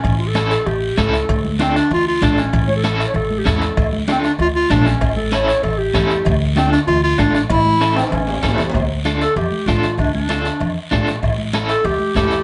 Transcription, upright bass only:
X:1
M:4/4
L:1/8
Q:1/4=193
K:Dm
V:1 name="Upright bass" clef=bass
A,,,4 A,,,2 ^C,,2 | D,,4 D,,2 A,,,2 | A,,,4 A,,,2 E,,2 | D,,4 D,,2 B,,,2 |
A,,,4 A,,,2 E,,2 | D,,4 D,,2 A,,,2 | A,,,4 A,,,2 A,,, ^C,, | D,,4 F,, z A,,,2 |
D,,4 F,, z A,,,2 | A,,,4 ^C,, z E,,2 |]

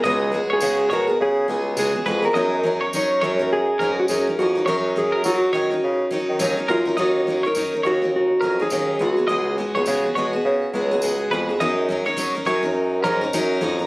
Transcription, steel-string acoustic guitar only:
X:1
M:4/4
L:1/16
Q:"Swing 16ths" 1/4=104
K:F#
V:1 name="Steel-string acoustic guitar"
[C,G,B,FG]2 [G,B,FG]2 [C,G,B,FG]2 [G,B,FG] [B,FG]3 [G,B,FG]2 [C,G,B,FG] [B,FG] [G,B,FG] [B,FG] | [F,CDA]2 [F,CDA]2 [F,CDA]2 [F,CDA] [CDA]3 [F,CDA]2 [F,CDA] [CDA] [F,CDA] [CDA] | [F,CDA]2 [F,CDA]2 [F,CDA]2 [F,CDA] [CDA]3 [F,CDA]2 [F,CDA] [CDA] [F,CDA] [CDA] | [D,F,CDA]2 [F,CDA] [CDA] [D,F,CDA] [CDA] [F,CDA] [CDA]3 [F,CDA] [CDA] [D,F,CDA]2 [G,B,FG] [B,FG] |
[C,G,B,FG]2 [G,B,FG] [B,FG] [C,G,B,FG] [B,FG] [G,B,FG] [B,FG]3 [G,B,FG] [B,FG] [C,G,B,FG]2 [G,B,FG] [B,FG] | [F,CDA]2 [F,CDA] [CDA] [F,CDA] [CDA] [F,CDA] [CDA]3 [F,CDA] [CDA] [F,CDA]2 [F,CDA] [CDA] |]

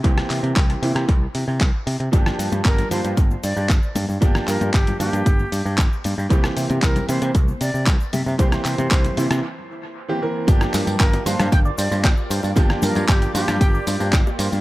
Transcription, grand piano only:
X:1
M:4/4
L:1/16
Q:1/4=115
K:Gdor
V:1 name="Grand piano"
[E,B,CG]6 [E,B,CE]2 z8 | [F,B,DG]6 [F,B,DF]2 z8 | [F,B,DG]6 [F,B,DF]2 z8 | [E,B,CG]6 [E,B,CE]2 z8 |
[E,B,CG]6 [E,B,CE]2 z4 z [E,B,CG] [E,B,CB]2 | [F,B,DG]6 [F,B,DF]2 z8 | [F,B,DG]6 [F,B,DF]2 z8 |]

